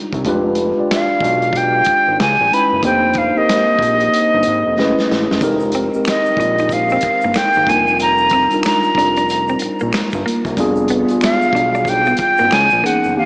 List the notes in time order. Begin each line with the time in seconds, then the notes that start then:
Already playing: G3 D4 D#4 F4 G4
0.13 C2, kick, closed hi-hat
0.25 F1 G#3 D4 F4 G4 B4, kick, closed hi-hat
0.55 closed hi-hat
0.77 B1 G#3 D4 F4 G4 D5
0.91 F5, finger snap, snare, closed hi-hat
1.21 B1, kick, closed hi-hat
1.42 closed hi-hat
1.53 kick, closed hi-hat
1.57 G5
1.84 G#1, kick, closed hi-hat
2.08 G#1
2.20 C#2 G#5, finger snap, snare, closed hi-hat
2.40 A#1
2.51 G#3 C#4 D#4 E4 B4 B5, closed hi-hat
2.73 F#1
2.83 F1 A#3 D4 D#4 G4 C5 G5, kick, closed hi-hat
3.13 kick, closed hi-hat
3.18 F5
3.35 A#1 A#3 C4 D#4 G4 A#4 D#5
3.49 finger snap, snare, closed hi-hat
3.79 A#1, kick, closed hi-hat
4.00 closed hi-hat
4.14 closed hi-hat
4.34 G1
4.43 closed hi-hat
4.47 G#1
4.67 F1
4.77 F#1 A3 C#4 E4 G#4 B4, snare
4.99 snare
5.11 A1, snare
5.31 F#1, snare
5.41 F1 G#3 C4 D#4 G4 A#4, kick, closed hi-hat, shaker
5.60 shaker
5.72 C4, closed hi-hat, shaker
5.93 A#1 G#3 C4 D#4 G4 A#4, shaker
6.05 finger snap, muted clean electric guitar stroke, snare, closed hi-hat, shaker
6.08 D#5, finger snap
6.25 shaker
6.37 A#1 D#4, kick, closed hi-hat
6.58 D#4, closed hi-hat, shaker
6.69 F5, kick, closed hi-hat, shaker
6.89 C4, shaker
7.01 G1, muted clean electric guitar stroke, kick, closed hi-hat, shaker
7.21 G1 A#3, shaker
7.34 finger snap, snare, shaker
7.36 G#1 G5, finger snap, closed hi-hat
7.53 G#1, shaker
7.67 F1 G3 A#3 D4 D#4 F4 A#4 G#5, kick, closed hi-hat
7.87 shaker
7.99 A#5, closed hi-hat, shaker
8.18 shaker
8.29 C4, kick, closed hi-hat, shaker
8.51 F1 G3 D4 D#4 F4 A#4, closed hi-hat, shaker
8.63 finger snap, snare, closed hi-hat, shaker
8.66 A#5, finger snap, muted clean electric guitar stroke
8.84 shaker
8.95 F1 D4, kick, closed hi-hat
9.16 D4, closed hi-hat, shaker
9.29 closed hi-hat, shaker
9.48 C4, shaker
9.59 A#1, muted clean electric guitar stroke, closed hi-hat, shaker
9.80 A#1 A#3, shaker
9.93 finger snap, snare, shaker
9.94 G1, finger snap, closed hi-hat
10.12 G1, kick, shaker
10.26 A#3, closed hi-hat
10.45 C2, kick, closed hi-hat, shaker
10.57 F1 G3 B3 D4 F4 G#4, kick, closed hi-hat, shaker
10.76 shaker
10.88 B3, closed hi-hat, shaker
11.08 B1 G3 B3 D4 F4 G#4, closed hi-hat, shaker
11.21 finger snap, muted clean electric guitar stroke, snare, closed hi-hat, shaker
11.24 F5, finger snap
11.42 shaker
11.53 B1 D4, kick, closed hi-hat
11.75 D4, shaker
11.85 kick, closed hi-hat, shaker
11.89 G5
12.06 B3, shaker
12.17 G#1, muted clean electric guitar stroke, kick, closed hi-hat, shaker
12.21 G5
12.37 G#1 A#3, shaker
12.51 finger snap, snare, shaker
12.52 C#2 G#5, finger snap, closed hi-hat
12.70 A#1, shaker
12.82 E3 A#3 B3 C#4 D#4 G#4 F#5, closed hi-hat
13.04 F#1, shaker
13.14 F2 D#3 A#3 C4 D4 G4 F5